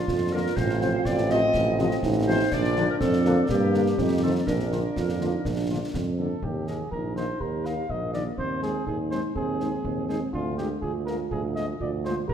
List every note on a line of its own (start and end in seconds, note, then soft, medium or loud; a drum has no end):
0.00 0.53 F3 medium
0.00 0.53 D4 medium
0.00 0.29 F4 medium
0.08 0.49 F2 medium
0.08 1.99 F4 medium
0.08 concert bass drum medium
0.08 snare medium
0.32 0.41 D3 medium
0.32 0.41 F3 medium
0.32 0.41 A#3 medium
0.32 0.42 F4 medium
0.32 0.57 A#4 loud
0.56 0.98 A1 medium
0.56 2.48 F3 medium
0.56 2.48 C4 medium
0.56 1.05 C5 loud
0.56 concert bass drum medium
0.56 snare medium
0.69 snare soft
0.80 0.90 C3 medium
0.80 0.90 F3 medium
0.80 0.89 C4 medium
0.80 0.91 F4 medium
0.80 snare soft
1.05 1.46 A1 medium
1.05 1.30 D5 medium
1.05 concert bass drum medium
1.05 snare medium
1.18 snare medium
1.29 1.38 C3 medium
1.29 1.38 F3 medium
1.29 1.38 C4 medium
1.29 1.40 F4 medium
1.29 2.00 D#5 loud
1.29 snare medium
1.54 1.95 A1 medium
1.54 concert bass drum medium
1.54 snare medium
1.79 1.88 C3 medium
1.79 1.88 F3 medium
1.79 1.88 C4 medium
1.79 1.88 F4 medium
1.79 snare soft
1.91 snare medium
2.03 2.44 A1 medium
2.03 2.53 D#4 medium
2.03 concert bass drum medium
2.03 snare medium
2.27 2.36 C3 medium
2.27 2.36 F3 medium
2.27 2.36 C4 medium
2.27 2.37 F4 medium
2.27 2.50 C5 loud
2.52 2.89 A#1 medium
2.52 3.45 F3 medium
2.52 2.99 D4 medium
2.52 3.98 D4 medium
2.52 2.89 D5 loud
2.52 concert bass drum medium
2.52 snare medium
2.52 crash soft
2.64 snare soft
2.76 2.85 D3 medium
2.76 2.85 F3 medium
2.76 2.85 A#3 medium
2.76 2.86 D4 medium
2.76 snare soft
2.90 2.95 A#4 medium
3.00 3.42 F2 medium
3.00 3.46 C4 medium
3.00 3.46 A4 medium
3.00 concert bass drum medium
3.00 snare medium
3.13 snare medium
3.25 3.34 D3 medium
3.25 3.34 F3 medium
3.25 3.34 A#3 medium
3.25 3.34 D4 medium
3.25 snare medium
3.48 3.90 G2 medium
3.48 3.98 A#3 medium
3.48 3.94 A#3 medium
3.48 4.23 G4 loud
3.48 concert bass drum medium
3.48 snare medium
3.74 3.83 D3 medium
3.74 3.83 G3 medium
3.74 3.83 A#3 medium
3.74 3.83 D4 medium
3.74 snare soft
3.86 snare medium
3.98 4.39 F2 medium
3.98 4.43 A3 medium
3.98 4.44 C4 medium
3.98 4.47 D#4 medium
3.98 concert bass drum medium
3.98 snare medium
4.23 4.32 D#3 medium
4.23 4.32 A3 medium
4.23 4.32 C4 medium
4.23 4.32 F4 medium
4.23 4.34 A4 medium
4.46 4.88 A#1 medium
4.46 6.14 A#3 medium
4.46 6.17 D4 medium
4.46 4.88 D4 medium
4.46 5.90 A#4 medium
4.46 concert bass drum medium
4.46 snare medium
4.59 snare soft
4.72 4.80 D3 soft
4.72 4.81 A#3 medium
4.72 4.80 D4 medium
4.72 4.81 F4 medium
4.72 snare soft
4.96 5.37 F2 medium
4.96 5.35 F4 medium
4.96 concert bass drum medium
4.96 snare medium
5.09 snare soft
5.20 5.29 D3 medium
5.20 5.29 A#3 medium
5.20 5.29 D4 medium
5.20 5.29 F4 soft
5.20 snare soft
5.33 5.45 D#4 medium
5.44 5.85 A#1 medium
5.44 5.90 D4 medium
5.44 concert bass drum medium
5.44 snare medium
5.70 5.78 D3 soft
5.70 5.78 A#3 soft
5.70 5.78 D4 soft
5.70 5.79 F4 soft
5.94 6.34 F2 medium
5.94 6.39 C4 medium
5.94 concert bass drum medium
5.94 snare medium
6.19 6.28 D3 soft
6.19 6.28 A#3 medium
6.19 6.28 D4 medium
6.19 6.45 A4 medium
6.43 6.83 D#2 medium
6.43 6.69 G4 soft
6.43 concert bass drum medium
6.67 6.76 D#3 soft
6.67 6.76 A#3 soft
6.67 6.76 D#4 soft
6.67 6.91 G#4 medium
6.67 6.76 A#4 soft
6.67 6.76 D#5 soft
6.67 snare soft
6.91 7.32 A#1 soft
6.91 7.37 D#4 medium
6.91 7.14 A#4 medium
6.91 concert bass drum medium
7.16 7.25 D#3 soft
7.16 7.25 A#3 soft
7.16 7.25 D#4 soft
7.16 7.25 A#4 soft
7.16 7.42 C5 medium
7.16 7.25 D#5 soft
7.16 snare soft
7.40 7.81 D#2 soft
7.40 7.86 G4 medium
7.40 7.67 A#4 medium
7.40 concert bass drum medium
7.64 7.74 D#3 soft
7.64 7.74 A#3 soft
7.64 7.74 D#4 soft
7.64 7.73 A#4 soft
7.64 7.73 D#5 soft
7.64 7.92 F5 medium
7.64 snare soft
7.89 8.30 A#1 medium
7.89 8.34 A#3 soft
7.89 8.13 D#5 medium
7.89 concert bass drum medium
8.13 8.22 D#3 soft
8.13 8.22 A#3 soft
8.13 8.22 D#4 soft
8.13 8.22 A#4 soft
8.13 8.24 D5 medium
8.13 8.22 D#5 soft
8.13 snare soft
8.37 8.79 D#2 soft
8.37 8.88 C4 medium
8.37 8.61 C5 medium
8.37 concert bass drum medium
8.62 8.71 G#3 soft
8.62 8.71 C4 soft
8.62 8.71 D#4 soft
8.62 8.85 G#4 medium
8.62 8.72 G#4 soft
8.62 8.71 C5 soft
8.62 snare soft
8.87 9.23 D#2 medium
8.87 9.35 D#4 medium
8.87 8.98 G#4 medium
8.87 concert bass drum medium
9.10 9.20 G#3 soft
9.10 9.20 C4 soft
9.10 9.20 D#4 soft
9.10 9.20 G#4 soft
9.10 9.21 C5 medium
9.10 9.20 C5 soft
9.10 snare soft
9.35 9.76 D#2 soft
9.35 9.81 C4 medium
9.35 10.05 G#4 medium
9.35 concert bass drum medium
9.60 9.69 G#3 soft
9.60 9.69 C4 soft
9.60 9.69 D#4 soft
9.60 9.69 G#4 soft
9.60 9.69 C5 soft
9.60 snare soft
9.85 10.25 D#2 soft
9.85 10.31 C4 soft
9.85 concert bass drum medium
10.08 10.18 G#3 soft
10.08 10.18 C4 soft
10.08 10.18 D#4 soft
10.08 10.19 G#4 medium
10.08 10.18 G#4 soft
10.08 10.18 C5 soft
10.08 snare soft
10.33 10.74 D2 medium
10.33 10.79 D4 medium
10.33 10.56 F4 medium
10.33 concert bass drum medium
10.57 10.67 G#3 soft
10.57 10.67 A#3 soft
10.57 10.67 F4 soft
10.57 10.68 G4 medium
10.57 10.67 G#4 soft
10.57 10.67 A#4 soft
10.57 snare soft
10.81 11.23 D2 soft
10.81 11.76 F4 medium
10.81 10.92 G#4 medium
10.81 concert bass drum medium
11.05 11.16 G#3 soft
11.05 11.16 A#3 medium
11.05 11.16 F4 soft
11.05 11.16 G#4 soft
11.05 11.17 A#4 medium
11.05 11.16 A#4 soft
11.05 snare soft
11.31 11.72 D2 medium
11.31 11.42 G#4 medium
11.31 concert bass drum medium
11.55 11.65 G#3 soft
11.55 11.65 A#3 soft
11.55 11.65 F4 soft
11.55 11.64 G#4 soft
11.55 11.64 A#4 soft
11.55 11.66 D#5 medium
11.55 snare soft
11.80 12.21 D2 medium
11.80 12.26 F4 medium
11.80 11.91 D5 medium
11.80 concert bass drum medium
12.05 12.14 G#3 medium
12.05 12.14 A#3 medium
12.05 12.14 F4 soft
12.05 12.14 G#4 medium
12.05 12.14 A#4 soft
12.05 12.16 C5 medium
12.05 snare soft
12.28 12.34 D#2 medium
12.28 12.34 G4 medium
12.28 12.34 A#4 medium
12.28 concert bass drum medium